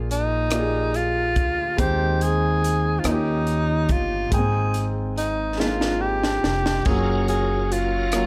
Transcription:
Already playing: A#1 A#2 A#3 F4 G#4 D5
0.11 D#4, closed hi-hat
0.50 A#3 F4 G4 D5, cross-stick, closed hi-hat
0.60 G#4
0.94 F4, closed hi-hat
1.36 D2, kick, closed hi-hat
1.77 D#2 D#3 G#3 C4 D#4 G4 C5, kick, closed hi-hat
2.21 G#4, closed hi-hat
2.64 closed hi-hat
2.99 F4
3.04 D#2 D#3 A#3 C#4 D#4 F4, cross-stick, closed hi-hat
3.13 G4
3.47 closed hi-hat
3.89 G1 F4, kick, closed hi-hat
4.30 G#1 G#2 G#3 A#3 D#4 G#4 G5, kick, closed hi-hat
4.38 C4
4.74 closed hi-hat
5.18 D#4, closed hi-hat
5.58 G#3 A#3 D#4 F4, snare
5.66 C4
5.81 snare
6.01 G4
6.23 snare
6.44 F1, snare
6.66 snare
6.85 F#1 F#3 A#3 C#4 F4 G#4 A#4, kick, splash
7.28 G#4, closed hi-hat
7.72 F4, closed hi-hat
8.12 A#3 C#4 F4, cross-stick, closed hi-hat
8.16 F#3

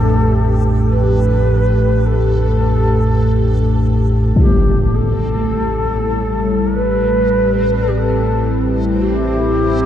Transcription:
Already playing: A1 F2 A2 A3 D4 G4 A4
0.90 B4
2.06 A4
4.35 A1 A2 C4 G4, impact
4.95 A4
5.91 G3
6.67 B4
7.50 C4
7.82 A4
7.88 E4 G4
7.97 A4
8.98 G4

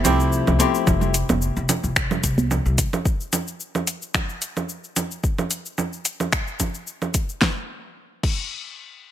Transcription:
0.04 C2 F3 A3 C4 E4 G4, closed hi-hat, low conga, cabasa
0.20 cabasa
0.32 cabasa
0.47 C2, low conga, cabasa
0.59 F3 A3 C4 E4 G4, closed hi-hat, high conga, cabasa
0.75 cabasa
0.87 F1, kick, low conga, cabasa
1.01 low conga, cabasa
1.14 closed hi-hat, cabasa
1.29 F1, high conga, low conga, cabasa
1.42 cabasa
1.57 F1, cabasa
1.69 closed hi-hat, low conga, cabasa
1.84 F1, cabasa
1.96 finger snap, kick, cabasa
2.11 low conga, cabasa
2.23 C2, kick, closed hi-hat, cabasa
2.38 high conga, cabasa
2.51 low conga, cabasa
2.66 C2, cabasa
2.78 kick, closed hi-hat, cabasa
2.93 low conga, cabasa
3.05 kick, cabasa
3.21 cabasa
3.33 closed hi-hat, low conga, cabasa
3.48 cabasa
3.60 cabasa
3.75 low conga, cabasa
3.87 closed hi-hat, cabasa
4.02 cabasa
4.14 finger snap, kick, low conga, cabasa
4.29 cabasa
4.42 closed hi-hat, cabasa
4.57 low conga, cabasa
4.69 cabasa
4.84 cabasa
4.96 closed hi-hat, low conga, cabasa
5.11 cabasa
5.24 kick, cabasa
5.38 low conga, cabasa
5.51 closed hi-hat, cabasa
5.66 cabasa
5.78 low conga, cabasa
5.93 cabasa
6.05 closed hi-hat, cabasa
6.20 low conga, cabasa
6.33 finger snap, kick, cabasa
6.47 cabasa
6.60 kick, closed hi-hat, low conga, cabasa
6.74 cabasa
6.87 cabasa
7.02 low conga, cabasa
7.14 kick, closed hi-hat, cabasa
7.29 cabasa
7.42 kick, snare
8.23 kick, crash

